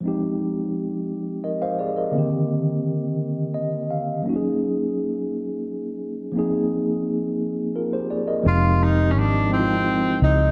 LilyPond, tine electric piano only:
\new Staff \with { instrumentName = "Tine electric piano" } { \time 6/8 \key f \dorian \tempo 4. = 57 << { r2 <bes' ees''>16 <c'' f''>16 <aes' d''>16 <bes' ees''>16~ | <bes' ees''>16 r4. r16 ees''8 f''8 | r2. | r2 <f' bes'>16 <g' c''>16 <aes' d''>16 <bes' ees''>16~ |
<bes' ees''>16 r2 r8. | } \\ { <f aes c' ees' g'>2. | <d ees bes c' g'>2. | <ges bes des' ees' ges' aes'>2. | <f bes c' ees' aes'>2. |
<f aes c' ees' g'>4 r8 <f aes c' ees' e' f'>4 r8 | } >> }